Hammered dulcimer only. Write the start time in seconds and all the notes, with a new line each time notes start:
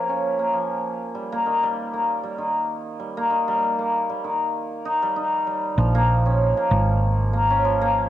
Already playing: F3 A#3
0.09 C#4
0.39 A#3
0.53 F3
1.15 G3
1.32 A#3
1.46 D#3
1.63 G3
1.94 A#3
2.23 G3
2.38 D#3
3.00 G3
3.17 A#3
3.30 D#3
3.48 G3
3.79 A#3
4.10 G3
4.24 D#3
4.85 D#4
5.02 G3
5.16 D#4
5.47 G3
5.78 F3
5.95 A#3
6.26 C#4
6.57 A#3
6.71 F3
7.33 A#3
7.50 C#4
7.65 F3
7.81 A#3